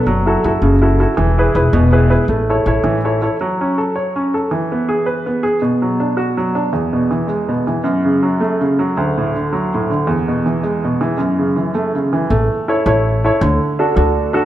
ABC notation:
X:1
M:6/8
L:1/8
Q:3/8=108
K:A
V:1 name="Grand piano"
F, [EFA] [EFA] C, [EFA] [EFA] | E, [EGB] [EGB] B,, [EGB] [EGB] | A, [EAc] [EAc] E, [EAc] [EAc] | [K:F#m] F, C A c C A |
E, B, G B B, G | B,, F, D F F, D | E,, B,, E, G, B,, E, | F,, C, F, A, C, F, |
D,, A,, D, F, A,, D, | E,, B,, E, G, B,, E, | F,, C, E, A, C, E, | [K:A] A,2 [EAc] [EAc]2 [EAc] |
D,2 [DFA] [DFA]2 [DFA] |]
V:2 name="Upright bass" clef=bass
F,,,2 F,,, F,,,3 | E,,,2 E,,, E,,,3 | A,,,2 A,,, A,,,3 | [K:F#m] z6 |
z6 | z6 | z6 | z6 |
z6 | z6 | z6 | [K:A] A,,, z2 A,,,3 |
D,, z2 D,,3 |]